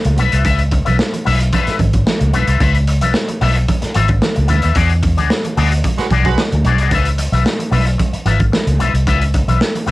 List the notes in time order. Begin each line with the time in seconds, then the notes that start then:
0.05 C#2, muted clean electric guitar stroke, closed hi-hat
0.16 B1 F4 B4 E5, closed hi-hat, low conga
0.32 C2 F4 B4 E5, closed hi-hat
0.45 C#2 F4 B4 E5, kick, closed hi-hat, muted conga
0.59 closed hi-hat
0.71 muted clean electric guitar stroke, kick, closed hi-hat, muted conga
0.85 B1 F4 B4 E5, closed hi-hat, high conga
0.99 snare, muted conga
1.13 muted clean electric guitar stroke, closed hi-hat, high conga
1.25 B1 F4 B4 E5, open hi-hat, low conga
1.40 muted clean electric guitar stroke, closed hi-hat
1.53 F4 B4 E5, kick, closed hi-hat, muted conga, high conga, low conga
1.67 muted fingered electric bass stroke, snare, closed hi-hat
1.79 G#1, muted clean electric guitar stroke, kick, closed hi-hat, muted conga, high conga
1.93 muted clean electric guitar stroke, kick, closed hi-hat
2.06 muted clean electric guitar stroke, snare, muted conga, high conga
2.20 C#2, muted clean electric guitar stroke, closed hi-hat
2.33 B1 F4 B4 E5, closed hi-hat, muted conga, low conga
2.47 C2 F4 B4 E5, closed hi-hat
2.60 C#2 F4 B4 E5, kick, closed hi-hat, muted conga
2.75 closed hi-hat
2.87 muted clean electric guitar stroke, closed hi-hat
3.01 B1 F4 B4 E5, closed hi-hat, high conga
3.14 snare, muted conga
3.28 muted clean electric guitar stroke, closed hi-hat, high conga
3.41 B1 F4 B4 E5, open hi-hat, muted conga, low conga
3.55 muted clean electric guitar stroke, closed hi-hat
3.68 muted clean electric guitar stroke, kick, closed hi-hat, muted conga, high conga, low conga
3.82 muted clean electric guitar stroke, muted fingered electric bass stroke, snare, closed hi-hat
3.94 G#1 F4 B4 E5, closed hi-hat, muted conga, high conga
4.08 muted clean electric guitar stroke, kick, closed hi-hat
4.22 muted clean electric guitar stroke, snare, muted conga, high conga
4.36 C#2, muted clean electric guitar stroke, closed hi-hat
4.48 D2 F4 B4 E5, closed hi-hat, muted conga, low conga
4.62 D#2 F4 B4 E5, closed hi-hat
4.75 E2 F#4 G#4 D5, kick, closed hi-hat
4.89 closed hi-hat
5.03 muted clean electric guitar stroke, kick, closed hi-hat, muted conga
5.17 D2 F#4 G#4 D5, closed hi-hat, high conga
5.30 snare
5.45 muted clean electric guitar stroke, closed hi-hat, high conga
5.57 D2 F#4 G#4 D5, open hi-hat, low conga
5.71 muted clean electric guitar stroke, closed hi-hat
5.84 muted clean electric guitar stroke, kick, closed hi-hat, muted conga, high conga, low conga
5.98 G#3 F#4 B4, muted clean electric guitar stroke, muted fingered electric bass stroke, snare, closed hi-hat
6.10 B1 F#4 G#4 D5, kick, closed hi-hat, muted conga, high conga
6.25 G#3 F#4 B4, muted clean electric guitar stroke, kick, closed hi-hat
6.38 muted clean electric guitar stroke, snare, muted conga, high conga
6.52 D2, muted clean electric guitar stroke, closed hi-hat
6.64 B1 F#4 G#4 D5, closed hi-hat, muted conga, low conga
6.78 C2 F#4 G#4 D5, closed hi-hat
6.91 C#2 F4 B4 E5, kick, closed hi-hat, muted conga
7.05 closed hi-hat
7.18 muted clean electric guitar stroke, closed hi-hat, muted conga
7.32 B1 F4 B4 E5, closed hi-hat, high conga
7.46 snare
7.59 muted clean electric guitar stroke, closed hi-hat, high conga
7.71 B1 F4 B4 E5, open hi-hat, muted conga, low conga
7.86 muted clean electric guitar stroke, closed hi-hat
7.98 muted clean electric guitar stroke, kick, closed hi-hat, high conga, low conga
8.13 muted clean electric guitar stroke, muted fingered electric bass stroke, closed hi-hat
8.26 G#1 F4 B4 E5, closed hi-hat, muted conga, high conga
8.40 muted clean electric guitar stroke, kick, closed hi-hat
8.52 muted clean electric guitar stroke, snare, high conga
8.67 C#2, closed hi-hat
8.79 B1 F4 B4 E5, closed hi-hat, muted conga, low conga
8.94 C2, muted clean electric guitar stroke, closed hi-hat
9.07 C#2 F4 B4 E5, kick, closed hi-hat
9.22 closed hi-hat
9.34 muted clean electric guitar stroke, kick, closed hi-hat
9.48 B1 F4 B4 E5, closed hi-hat, high conga
9.60 snare, muted conga
9.74 muted clean electric guitar stroke, closed hi-hat, high conga
9.86 B1 F4 B4, open hi-hat, muted conga, low conga